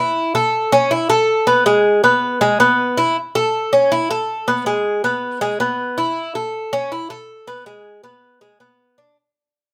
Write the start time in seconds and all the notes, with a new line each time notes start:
Already playing: E4
0.35 A4
0.72 C#4
0.91 E4
1.10 A4
1.47 B3
1.66 G#3
2.04 B3
2.41 G#3
2.60 B3
2.98 E4
3.35 A4
3.73 C#4
3.92 E4
4.11 A4
4.48 B3
4.66 G#3
5.04 B3
5.41 G#3
5.60 B3
5.98 E4
6.35 A4
6.73 C#4
6.92 E4
7.10 A4
7.47 B3
7.66 G#3
8.04 B3
8.41 G#3
8.60 B3
8.98 D4